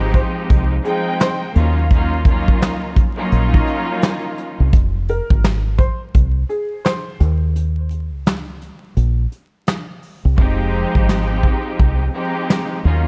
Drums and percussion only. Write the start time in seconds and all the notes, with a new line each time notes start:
0.14 kick, closed hi-hat
0.50 kick, closed hi-hat
0.85 closed hi-hat
1.20 snare, clap, closed hi-hat
1.56 closed hi-hat
1.91 kick, closed hi-hat
2.25 kick, closed hi-hat
2.48 kick
2.62 snare, clap, closed hi-hat
2.96 kick, closed hi-hat
3.32 closed hi-hat
3.54 kick
3.67 closed hi-hat
4.02 snare, clap, closed hi-hat
4.38 closed hi-hat
4.73 kick, closed hi-hat
5.08 closed hi-hat
5.30 kick
5.44 snare, clap, closed hi-hat
5.79 kick, closed hi-hat
6.14 kick, closed hi-hat
6.50 closed hi-hat
6.85 snare, clap, closed hi-hat
7.20 closed hi-hat
7.56 closed hi-hat
7.91 closed hi-hat
8.26 snare, clap, closed hi-hat
8.62 closed hi-hat
8.97 closed hi-hat
9.32 closed hi-hat
9.67 snare, clap, closed hi-hat
10.03 open hi-hat
10.38 kick
10.95 kick
11.09 snare, clap
11.43 kick
11.79 kick
12.50 snare, clap